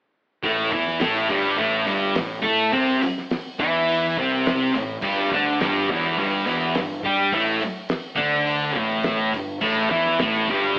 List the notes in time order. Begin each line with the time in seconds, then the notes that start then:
0.43 A1 A2 A3, kick, open hi-hat
0.72 E2 E3 E4, kick, open hi-hat
0.87 snare
1.00 A1 A2 A3, snare, open hi-hat
1.28 G1 G2 G3, kick, open hi-hat
1.57 A1 A2 A3, kick, open hi-hat
1.85 G1 G2 G3, open hi-hat
2.14 A1 A2, snare, open hi-hat
2.42 A2 A3 A4, kick, open hi-hat
2.46 snare
2.72 C2 C3 C4, kick, open hi-hat
3.02 muted fingered electric bass stroke, muted distorted electric guitar stroke, open hi-hat
3.18 snare
3.31 snare, open hi-hat
3.59 E2 E3 E4, kick, open hi-hat
3.88 open hi-hat
4.17 C2 C3 C4, kick, open hi-hat
4.46 snare, open hi-hat
4.74 A1 A2, open hi-hat
5.02 G1 G2 G3, kick, crash
5.31 D2 D3 D4, kick, open hi-hat
5.60 G1 G2 G3, snare, open hi-hat
5.89 E1 E2 E3, kick
6.17 G1 G2 G3, kick, open hi-hat
6.46 E1 E2 E3, open hi-hat
6.75 G1 G2, snare, open hi-hat
7.03 G2 G3 G4, kick, open hi-hat
7.32 A1 A2 A3, kick, open hi-hat
7.60 muted distorted electric guitar stroke, muted fingered electric bass stroke, open hi-hat
7.89 snare, open hi-hat
8.15 D2 D3 D4, kick, open hi-hat
8.47 open hi-hat
8.76 A1 A2 A3, kick, open hi-hat
9.03 snare, open hi-hat
9.32 G1 G2, open hi-hat
9.61 A1 A2 A3, kick, crash
9.90 E2 E3 E4, kick, open hi-hat
10.06 snare
10.18 A1 A2 A3, snare, open hi-hat
10.48 G1 G2 G3, kick, open hi-hat